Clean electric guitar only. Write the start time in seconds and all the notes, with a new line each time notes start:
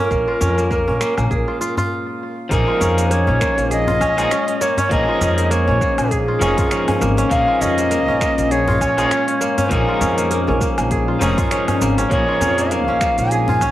2.49 F3 A#3 D#4
2.53 G#4
4.17 F3 A#3 D#4 G#4
4.89 F3 A#3 D#4 G#4
6.39 F3 A#3 D#4 G#4
7.29 F3 A#3 D#4 G#4
8.97 F3 A#3 D#4 G#4
9.69 F3 A#3 D#4 G#4
11.19 F3 A#3 D#4 G#4
12.09 F3 A#3 D#4 G#4